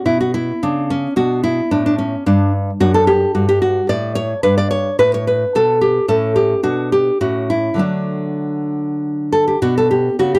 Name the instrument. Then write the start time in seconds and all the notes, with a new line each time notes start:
nylon-string guitar
Already playing: C#4
0.06 B2 E4
0.21 F#4
0.34 E4
0.63 C#3 D4
0.90 C#4
1.16 B2 D4 F#4
1.44 E4
1.71 A2 D4
1.86 D4
1.98 C#4
2.26 G2 D4
2.80 F#2 D4 F#4
2.94 A4
3.07 G4
3.35 G2 F#4
3.49 G4
3.62 F#4
3.89 A2 D5
4.15 C#5
4.43 G2 D4 B4
4.58 D5
4.71 C#5
4.99 A2 B4
5.14 C#5
5.27 B4
5.55 B2 A4
5.81 G4
6.08 A2 C#4 A4
6.36 G4
6.63 B2 D4 F#4
6.92 G4
7.21 A2 C#4 F#4
7.50 E4
7.74 D3 F#3 A3
7.79 D4
9.33 A4
9.48 G4
9.62 B2 D4 F#4
9.78 A4
9.91 G4
10.19 C#3 F#4
10.35 G4